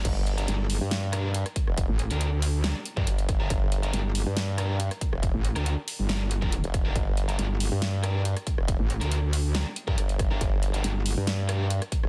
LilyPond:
<<
  \new Staff \with { instrumentName = "Distorted electric guitar" } { \time 4/4 \key g \minor \tempo 4 = 139 r8. <d' g' bes'>8 r4 r16 <d' g' bes'>8 r4 | r8. <d' g' bes'>8 r8. <d' g' bes'>16 r8 <d' g' bes'>16 r8. <d' g' bes'>16 | r8. <d' g' bes'>8 r4 r16 <d' g' bes'>8 r4 | r8. <d' g' bes'>8 r8. <d' g' bes'>16 r8 <d' g' bes'>16 r8. <d' g' bes'>16 |
r8. <d' g' bes'>8 r4 r16 <d' g' bes'>8 r4 | r8. <d' g' bes'>8 r8. <d' g' bes'>16 r8 <d' g' bes'>16 r8. <d' g' bes'>16 | r8. <d' g' bes'>8 r4 r16 <d' g' bes'>8 r4 | }
  \new Staff \with { instrumentName = "Wobble bass" } { \clef bass \time 4/4 \key g \minor r4 g,,8. r2 r16 | r16 a,,8 d,4. r4. r16 | r4 g,,8. r2 r16 | r16 a,,8 d,8 r8 g,,4. r8. |
r4 g,,8. r2 r16 | r16 a,,8 d,4. r4. r16 | r4 g,,8. r2 r16 | }
  \new Staff \with { instrumentName = "Wobble bass" } { \clef bass \time 4/4 \key g \minor g,,4 r8. g,4. r8 f,,16~ | f,,16 r2 r8 g,16 g,,8. g,,16 | g,,4 r8. g,4. r8 f,,16~ | f,,16 r2. f,,8. |
g,,4 r8. g,4. r8 f,,16~ | f,,16 r2 r8 g,16 g,,8. g,,16 | g,,4 r8. g,4. r8 f,,16 | }
  \new DrumStaff \with { instrumentName = "Drums" } \drummode { \time 4/4 <cymc hh bd>8 hh16 hh16 hh8 hho8 <hh sn>8 <hh ss>8 hh16 <hh ss>16 <hh bd>16 ss16 | <hh bd>8 hh16 hh16 hh8 hho8 <hh sn>8 hh16 bd16 hh16 hh16 <hh bd ss>8 | <hh bd>8 hh16 hh16 hh8 hho8 <hh sn>8 <hh ss>8 hh16 <hh ss>16 <hh bd>16 ss16 | <hh bd>8 hh16 <hh ss>16 hh8 hho8 <hh sn>8 hh16 bd16 hh16 hh16 <hh bd ss>8 |
<hh bd>8 hh16 hh16 hh8 hho8 <hh sn>8 <hh ss>8 hh16 <hh ss>16 <hh bd>16 ss16 | <hh bd>8 hh16 hh16 hh8 hho8 <hh sn>8 hh16 bd16 hh16 hh16 <hh bd ss>8 | <hh bd>8 hh16 hh16 hh8 hho8 <hh sn>8 <hh ss>8 hh16 <hh ss>16 <hh bd>16 ss16 | }
>>